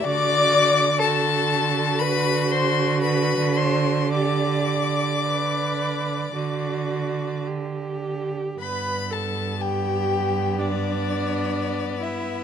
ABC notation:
X:1
M:4/4
L:1/8
Q:1/4=59
K:G
V:1 name="Violin"
d'2 a2 b c' b c' | d'6 z2 | b a g2 d3 e |]
V:2 name="Violin"
d2 A2 B c B c | d6 z2 | B,8 |]
V:3 name="Viola"
F2 F6 | G2 B2 F2 G2 | B A G2 D3 E |]
V:4 name="Cello" clef=bass
D,8- | D,4 D,4 | G,,8 |]